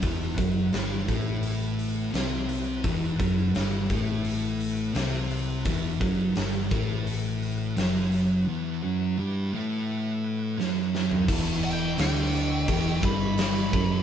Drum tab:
CC |----------------|----------------|----------------|----------------|
HH |o-o-o-o-o-o-o-o-|o-o-o-o-o-o-o-o-|o-o-o-o-o-o-o-o-|----------------|
SD |----o-------o---|----o-------o---|----o-------o---|------------o-o-|
FT |----------------|----------------|----------------|---------------o|
BD |o-o---o---------|o-o---o---------|o-o---o---------|----------------|

CC |x-x-x-x-x-x-x-x-|
HH |----------------|
SD |----o-------o---|
FT |----------------|
BD |o-------o-o---o-|